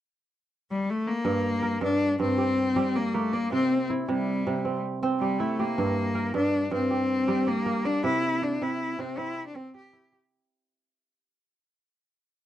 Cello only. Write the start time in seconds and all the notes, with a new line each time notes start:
0.71 G3
0.90 A3
1.07 A#3
1.83 D4
2.21 C4
2.96 A#3
3.14 A3
3.33 A#3
3.52 C4
4.09 G3
5.20 G3
5.39 A3
5.60 A#3
6.36 D4
6.74 C4
7.48 A#3
7.85 D4
8.05 E4
8.43 D4
8.62 E4
9.00 C4
9.18 E4
9.47 D4
9.56 C4
9.76 G4